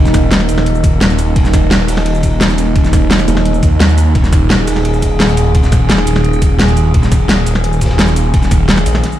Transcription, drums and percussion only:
0.05 snare, shaker
0.14 kick, snare, closed hi-hat, ride, shaker
0.31 snare, closed hi-hat, ride
0.40 snare
0.48 closed hi-hat, ride, shaker
0.58 snare
0.66 closed hi-hat
0.75 shaker
0.84 kick, closed hi-hat, ride, shaker
1.01 snare, closed hi-hat, ride
1.10 shaker
1.19 closed hi-hat, ride, shaker
1.36 kick, closed hi-hat, ride
1.45 snare, shaker
1.53 kick, snare, closed hi-hat, ride, shaker
1.71 snare, closed hi-hat, ride
1.88 snare, closed hi-hat, open hi-hat, shaker
1.97 snare
2.06 closed hi-hat, ride
2.15 shaker
2.23 kick, closed hi-hat, ride, shaker
2.41 snare, closed hi-hat, ride
2.49 snare, shaker
2.58 closed hi-hat, ride, shaker
2.67 ride
2.76 kick, closed hi-hat, ride
2.84 snare, shaker
2.93 kick, snare, closed hi-hat, ride, shaker
3.10 snare, closed hi-hat, ride
3.19 snare, shaker
3.28 closed hi-hat, ride, shaker
3.37 snare
3.45 closed hi-hat, ride
3.54 shaker
3.62 kick, closed hi-hat, ride, shaker
3.80 snare, closed hi-hat, ride
3.89 shaker
3.98 closed hi-hat, ride, shaker
4.15 kick, closed hi-hat, ride
4.23 snare, shaker
4.32 kick, snare, closed hi-hat, ride, shaker
4.50 snare, closed hi-hat, ride
4.67 snare, closed hi-hat, open hi-hat, shaker
4.76 snare
4.85 closed hi-hat, ride
4.94 shaker
5.02 kick, closed hi-hat, ride, shaker
5.20 snare, closed hi-hat, ride
5.29 snare, shaker
5.37 closed hi-hat, ride, shaker
5.46 ride
5.55 kick, closed hi-hat, ride
5.63 snare, shaker
5.72 kick, snare, closed hi-hat, ride, shaker
5.89 snare, closed hi-hat, ride
5.98 snare
6.07 closed hi-hat, ride, shaker
6.16 snare
6.24 closed hi-hat
6.33 shaker
6.42 kick, closed hi-hat, ride, shaker
6.59 snare, closed hi-hat, ride
6.68 shaker
6.76 closed hi-hat, ride, shaker
6.94 kick, closed hi-hat, ride
7.03 snare, shaker
7.12 kick, snare, closed hi-hat, ride, shaker
7.29 snare, closed hi-hat, ride
7.46 closed hi-hat, ride, shaker
7.55 snare
7.64 closed hi-hat, ride
7.73 shaker
7.81 kick, snare, closed hi-hat, ride, shaker
7.85 snare, ride
7.90 snare, ride
7.98 snare, closed hi-hat, ride
8.08 snare, shaker
8.16 closed hi-hat, ride, shaker
8.25 ride
8.34 kick, closed hi-hat, ride
8.42 snare, shaker
8.51 kick, snare, closed hi-hat, ride, shaker
8.69 snare, closed hi-hat, ride
8.77 snare, shaker
8.86 closed hi-hat, ride, shaker
8.94 snare
9.04 snare, closed hi-hat
9.12 shaker

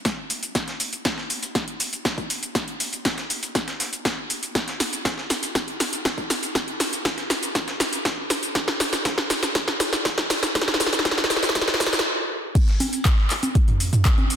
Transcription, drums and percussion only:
0.05 kick, snare, closed hi-hat, shaker
0.30 closed hi-hat, open hi-hat, shaker
0.43 closed hi-hat, shaker
0.55 kick, snare, closed hi-hat, shaker
0.68 snare, closed hi-hat
0.80 closed hi-hat, open hi-hat, shaker
0.93 closed hi-hat, shaker
1.05 kick, snare, closed hi-hat, shaker
1.18 snare
1.30 closed hi-hat, open hi-hat, shaker
1.43 closed hi-hat, shaker
1.55 kick, snare, closed hi-hat, shaker
1.68 closed hi-hat
1.80 closed hi-hat, open hi-hat, shaker
1.93 closed hi-hat, shaker
2.05 kick, snare, closed hi-hat, shaker
2.18 kick, closed hi-hat
2.30 closed hi-hat, open hi-hat, shaker
2.43 closed hi-hat, shaker
2.55 kick, snare, closed hi-hat, shaker
2.68 closed hi-hat
2.80 open hi-hat, shaker
2.93 closed hi-hat, shaker
3.05 kick, snare, closed hi-hat, shaker
3.18 snare, closed hi-hat
3.30 closed hi-hat, open hi-hat, shaker
3.43 closed hi-hat, shaker
3.55 kick, snare, closed hi-hat, shaker
3.68 snare, closed hi-hat
3.80 snare, closed hi-hat, open hi-hat, shaker
3.93 closed hi-hat, shaker
4.05 kick, snare, closed hi-hat, shaker
4.30 closed hi-hat, open hi-hat, shaker
4.43 closed hi-hat, shaker
4.55 kick, snare, closed hi-hat, shaker
4.68 snare, closed hi-hat
4.80 snare, closed hi-hat, open hi-hat, shaker
4.93 closed hi-hat, shaker
5.05 kick, snare, closed hi-hat, shaker
5.18 snare
5.30 snare, closed hi-hat, open hi-hat, shaker
5.43 closed hi-hat, shaker
5.55 kick, snare, closed hi-hat, shaker
5.68 closed hi-hat
5.80 snare, closed hi-hat, open hi-hat, shaker
5.93 closed hi-hat, shaker
6.05 kick, snare, closed hi-hat, shaker
6.18 kick, closed hi-hat
6.30 snare, closed hi-hat, open hi-hat, shaker
6.43 closed hi-hat, shaker
6.55 kick, snare, closed hi-hat, shaker
6.68 closed hi-hat
6.80 snare, open hi-hat, shaker
6.93 closed hi-hat, shaker
7.05 kick, snare, closed hi-hat, shaker
7.18 snare, closed hi-hat
7.30 snare, closed hi-hat, open hi-hat, shaker
7.43 closed hi-hat, shaker
7.55 kick, snare, closed hi-hat, shaker
7.68 snare, closed hi-hat
7.80 snare, closed hi-hat, open hi-hat, shaker
7.93 closed hi-hat, shaker
8.05 kick, snare, closed hi-hat, shaker
8.30 snare, closed hi-hat, open hi-hat, shaker
8.43 closed hi-hat, shaker
8.55 kick, snare, closed hi-hat, shaker
8.68 snare, closed hi-hat
8.80 snare, closed hi-hat, open hi-hat, shaker
8.93 snare, closed hi-hat, shaker
9.05 kick, snare, closed hi-hat, shaker
9.18 snare
9.30 snare, closed hi-hat, open hi-hat, shaker
9.43 snare, closed hi-hat, shaker
9.55 kick, snare, closed hi-hat, shaker
9.68 snare, closed hi-hat
9.80 snare, closed hi-hat, open hi-hat, shaker
9.93 snare, closed hi-hat, shaker
10.05 kick, snare, closed hi-hat, shaker
10.18 kick, snare, closed hi-hat
10.30 snare, closed hi-hat, open hi-hat, shaker
10.43 snare, closed hi-hat, shaker
10.55 kick, snare, closed hi-hat, shaker
10.61 snare
10.68 snare, closed hi-hat
10.74 snare
10.80 snare, open hi-hat, shaker
10.86 snare
10.93 snare, closed hi-hat, shaker
10.99 snare
11.05 kick, snare, closed hi-hat, shaker
11.11 snare
11.18 snare, closed hi-hat
11.24 snare
11.30 snare, closed hi-hat, open hi-hat, shaker
11.36 snare
11.43 snare, closed hi-hat, shaker
11.49 snare
11.55 kick, snare, closed hi-hat, shaker
11.61 snare
11.68 snare, closed hi-hat
11.74 snare
11.80 kick, snare, closed hi-hat, open hi-hat, shaker
11.86 snare
11.93 snare, closed hi-hat, shaker
11.99 snare
12.55 kick, closed hi-hat, crash, shaker
12.68 snare, closed hi-hat
12.80 closed hi-hat, open hi-hat, high conga, shaker
12.93 closed hi-hat, shaker
13.05 kick, snare, clap, closed hi-hat, shaker
13.18 snare
13.30 clap, closed hi-hat, open hi-hat, shaker
13.43 closed hi-hat, high conga, shaker
13.55 kick, closed hi-hat, shaker
13.68 closed hi-hat, mid tom
13.80 closed hi-hat, open hi-hat, shaker
13.93 closed hi-hat, mid tom, shaker
14.05 kick, snare, clap, closed hi-hat, shaker
14.18 closed hi-hat, high conga
14.30 closed hi-hat, open hi-hat, shaker

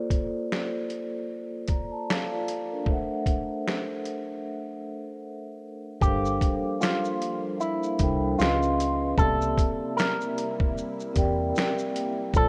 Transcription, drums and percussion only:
0.10 kick, closed hi-hat
0.52 finger snap, snare
0.90 closed hi-hat
1.68 kick, closed hi-hat
2.10 finger snap, snare
2.48 closed hi-hat
2.86 kick
3.26 kick, closed hi-hat
3.68 finger snap, snare
4.05 closed hi-hat
6.01 kick, shaker
6.25 shaker
6.41 kick, closed hi-hat, shaker
6.81 finger snap, snare, shaker
7.04 shaker
7.22 closed hi-hat, shaker
7.60 shaker
7.83 shaker
7.99 kick, closed hi-hat, shaker
8.39 finger snap, snare, shaker
8.62 shaker
8.80 closed hi-hat, shaker
9.18 kick, shaker
9.42 shaker
9.58 kick, closed hi-hat, shaker
9.98 finger snap, snare, shaker
10.21 shaker
10.38 closed hi-hat, shaker
10.60 kick
10.78 shaker
11.00 shaker
11.16 kick, closed hi-hat, shaker
11.56 finger snap, snare, shaker
11.78 shaker
11.96 closed hi-hat, shaker
12.34 kick, shaker

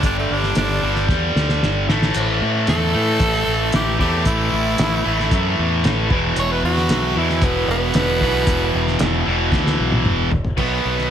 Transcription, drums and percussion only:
0.03 kick, closed hi-hat
0.43 snare
0.55 snare, closed hi-hat
0.96 snare
1.09 kick, snare
1.36 snare
1.49 snare
1.63 snare
1.89 snare
2.02 snare
2.14 closed hi-hat, crash
2.67 snare, closed hi-hat
3.20 kick, closed hi-hat
3.72 snare, closed hi-hat
3.99 kick, snare
4.25 kick, closed hi-hat
4.78 snare, closed hi-hat
5.20 snare
5.31 kick, closed hi-hat
5.84 snare, closed hi-hat
6.10 kick
6.36 closed hi-hat
6.77 snare
6.89 snare, closed hi-hat
7.30 snare
7.42 kick, closed hi-hat
7.94 snare, closed hi-hat
8.21 kick, snare
8.47 kick, closed hi-hat
8.88 snare
8.99 snare, closed hi-hat
9.52 kick, snare
9.67 snare
9.92 high tom
10.05 mid tom
10.32 floor tom
10.45 floor tom
10.58 kick, crash
10.99 snare

